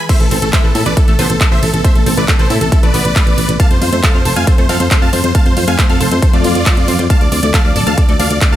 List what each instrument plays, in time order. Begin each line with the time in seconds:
0.09 ambient pad C3 A3 B3, synth pluck A3, supersaw synth C5 E5, kick, closed hi-hat, crash, ride
0.20 fm bass A1, supersaw synth A4, closed hi-hat
0.31 fm bass A1, synth pluck C4, supersaw synth A4, open hi-hat, ride
0.42 fm bass A1, synth pluck A3, supersaw synth A4, closed hi-hat
0.53 synth pluck A3, supersaw synth C5 E5, kick, clap, closed hi-hat, ride
0.64 fm bass A1, supersaw synth A4, synth pluck B4
0.75 fm bass A2, synth pluck E4, supersaw synth A4, open hi-hat, ride
0.86 fm bass A1, synth pluck A3, supersaw synth B4 D5, closed hi-hat
0.97 synth pluck E4, supersaw synth A4, kick, closed hi-hat, ride
1.08 fm bass A1, synth pluck A3, supersaw synth A4, closed hi-hat
1.19 fm bass A1, synth pluck B3, supersaw synth A4 C5, open hi-hat, ride
1.30 fm bass A1, supersaw synth A4, closed hi-hat
1.41 synth pluck A3, supersaw synth A4, kick, clap, closed hi-hat, ride
1.52 fm bass A1, supersaw synth C5 E5
1.63 fm bass A1, supersaw synth A4, open hi-hat, ride
1.74 fm bass A1, supersaw synth A4, closed hi-hat
1.84 synth pluck A3, supersaw synth C5 E5, kick, closed hi-hat, ride
1.95 fm bass A1, supersaw synth A4, closed hi-hat
2.06 fm bass A1, synth pluck C4, supersaw synth A4, open hi-hat, ride
2.17 fm bass A1, synth pluck A3, supersaw synth B4 D5, closed hi-hat
2.28 synth pluck A3, supersaw synth A4, kick, clap, closed hi-hat, ride
2.39 fm bass A1, supersaw synth A4 C5, synth pluck B4, closed hi-hat
2.50 fm bass A2, synth pluck E4, supersaw synth A4, open hi-hat, ride
2.61 fm bass A1, synth pluck A3, supersaw synth A4, closed hi-hat
2.72 synth pluck E4, supersaw synth A4, kick, closed hi-hat, ride
2.83 fm bass A1, synth pluck A3, supersaw synth B4 D5, closed hi-hat
2.94 fm bass A1, synth pluck B3, open hi-hat, ride
3.05 fm bass A1, closed hi-hat
3.16 synth pluck A3, kick, clap, closed hi-hat, ride
3.27 fm bass A1, closed hi-hat
3.38 fm bass A1, open hi-hat, ride
3.49 fm bass A1, closed hi-hat
3.60 ambient pad F3 A3 C4, synth pluck A3, supersaw synth F5 A5, kick, closed hi-hat, ride
3.71 fm bass F2, supersaw synth C5, closed hi-hat
3.82 fm bass F2, synth pluck F4, supersaw synth C5, open hi-hat, ride
3.93 fm bass F2, synth pluck A3, supersaw synth C5, closed hi-hat
4.03 synth pluck A3, supersaw synth F5 A5, kick, clap, closed hi-hat, ride
4.14 fm bass F2, supersaw synth C5, synth pluck F5
4.25 fm bass F1, synth pluck A4, supersaw synth C5, open hi-hat, ride
4.36 fm bass F2, synth pluck A3, supersaw synth F5 G#5, closed hi-hat
4.47 synth pluck A4, supersaw synth C5, kick, closed hi-hat, ride
4.58 fm bass F2, synth pluck A3, supersaw synth C5, closed hi-hat
4.69 fm bass F2, synth pluck C4, supersaw synth A4 F5, open hi-hat, ride
4.80 fm bass F2, supersaw synth C5, closed hi-hat
4.91 synth pluck A3, supersaw synth C5, kick, clap, closed hi-hat, ride
5.02 fm bass F2, supersaw synth F5 A5
5.13 fm bass F2, supersaw synth C5, open hi-hat, ride
5.24 fm bass F2, supersaw synth C5, closed hi-hat
5.35 synth pluck A3, supersaw synth F5 A5, kick, closed hi-hat, ride
5.46 fm bass F2, supersaw synth C5, closed hi-hat
5.57 fm bass F2, synth pluck F4, supersaw synth C5, open hi-hat, ride
5.68 fm bass F2, synth pluck A3, supersaw synth F5 G#5, closed hi-hat
5.79 synth pluck A3, supersaw synth C5, kick, clap, closed hi-hat, ride
5.90 fm bass F2, supersaw synth A4 F5, synth pluck F5, closed hi-hat
6.01 fm bass F1, synth pluck A4, supersaw synth C5, open hi-hat, ride
6.11 fm bass F2, synth pluck A3, supersaw synth C5, closed hi-hat
6.22 synth pluck A4, supersaw synth C5, kick, closed hi-hat, ride
6.33 fm bass F2, synth pluck A3, supersaw synth F4 D5, closed hi-hat
6.44 fm bass F2, synth pluck F4, open hi-hat, ride
6.55 fm bass F2, closed hi-hat
6.66 synth pluck A3, kick, clap, closed hi-hat, ride
6.77 fm bass F2, closed hi-hat
6.88 fm bass F2, synth pluck C5, open hi-hat, ride
6.99 fm bass F2, synth pluck C5, closed hi-hat
7.10 ambient pad D3 D4 F4 A4, synth pluck A3, supersaw synth F5 A5, kick, closed hi-hat, ride
7.21 fm bass D2, supersaw synth D5, closed hi-hat
7.32 fm bass D2, synth pluck F4, supersaw synth D5, open hi-hat, ride
7.43 fm bass D2, synth pluck A3, supersaw synth D5, closed hi-hat
7.54 synth pluck A3, supersaw synth F5 A5, kick, clap, closed hi-hat, ride
7.65 fm bass D2, supersaw synth D5, synth pluck F5
7.76 fm bass D1, synth pluck A4, supersaw synth D5, open hi-hat, ride
7.87 fm bass D2, synth pluck A3, supersaw synth F5 A5, closed hi-hat
7.98 synth pluck A4, supersaw synth D5, kick, closed hi-hat, ride
8.09 fm bass D2, synth pluck A3, supersaw synth D5, closed hi-hat
8.20 fm bass D2, synth pluck D4, supersaw synth D5 F5, open hi-hat, ride
8.30 fm bass D2, supersaw synth D5, closed hi-hat
8.41 synth pluck A3, supersaw synth D5, kick, clap, closed hi-hat, ride
8.52 fm bass D2, supersaw synth F5 A5